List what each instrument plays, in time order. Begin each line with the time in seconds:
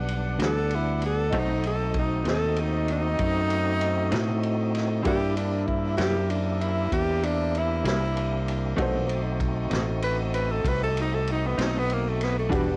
Already playing: fingered electric bass B1, tonewheel organ G3 B3 D4, grand piano D4 F#4 G4 B4, horn section D5 F#5
0.09 ride
0.39 fingered electric bass D2, clean electric guitar E3 G3 D4 F#4, snare, ride
0.44 tenor saxophone A4
0.71 ride
0.75 tenor saxophone E4
1.02 tenor saxophone A4, ride
1.30 fingered electric bass B1, clean electric guitar B2 A3 C4, tonewheel organ C4 F#4, grand piano D#4 F#4 A4 C5, horn section A4, kick, ride
1.34 tonewheel organ A3 D#4, clean electric guitar D#4, horn section C5 D#5
1.38 tenor saxophone D#4
1.63 tenor saxophone A4, ride
1.94 kick, ride
1.99 tenor saxophone D#4
2.24 fingered electric bass D#2, clean electric guitar B2 A3 C4 D#4, snare, ride
2.29 tenor saxophone A4
2.56 tenor saxophone D#4, ride
2.88 tenor saxophone D#4, ride
3.19 fingered electric bass F#2, kick, ride
3.50 ride
3.81 ride
4.12 fingered electric bass A2, clean electric guitar B2 A3 C4 D#4, snare, ride
4.43 ride
4.75 snare, ride
5.03 fingered electric bass G2, clean electric guitar C3 G3 A#3 E4, tonewheel organ A#3 D4 E4 G4, grand piano E4 G4 A#4, tenor saxophone G4, horn section A#4 C5 E5, kick, ride
5.07 grand piano D5
5.36 tenor saxophone D4, ride
5.66 tenor saxophone E4, kick, ride
5.97 fingered electric bass F#2, clean electric guitar C3 G3 A#3 E4, tenor saxophone G4, snare, ride
6.30 tenor saxophone D4, ride
6.61 tenor saxophone E4, ride
6.92 fingered electric bass E2, tenor saxophone G4, kick, ride
7.23 tenor saxophone D4, ride
7.55 tenor saxophone E4, ride
7.84 fingered electric bass C2, clean electric guitar C3 G3 A#3 E4, tenor saxophone E4, snare, ride
8.17 ride
8.48 ride
8.75 fingered electric bass B1, clean electric guitar B2 A3 C4 D#4, tonewheel organ E3 G3 A#3 C#4, grand piano D#4 F#4, kick, ride
8.79 horn section A4 D#5, grand piano A4 C5
9.06 tonewheel organ A3 C4 D#4 F#4, ride
9.40 kick, ride
9.70 fingered electric bass A1, clean electric guitar B2 A3 C4 D#4, snare, ride
10.02 tenor saxophone B4, ride
10.34 tenor saxophone B4, ride
10.52 tenor saxophone A4
10.64 fingered electric bass C2, tenor saxophone B4, kick, ride
10.83 tenor saxophone A4
10.97 tenor saxophone D#4, ride
11.14 tenor saxophone A4
11.27 ride
11.32 tenor saxophone D#4
11.47 tenor saxophone B3
11.58 fingered electric bass B1, clean electric guitar B2 A3 C4 D#4, snare, ride
11.63 tenor saxophone D#4
11.79 tenor saxophone B3
11.90 tenor saxophone A#3, ride
12.10 tenor saxophone A3
12.21 tenor saxophone B3, snare, ride
12.39 tenor saxophone A3
12.49 fingered electric bass E1, clean electric guitar E3 G3 D4 F#4, tonewheel organ G3 B3 D4, grand piano D4 F#4 G4, horn section D5 F#5, kick, ride
12.53 tenor saxophone G3, grand piano B4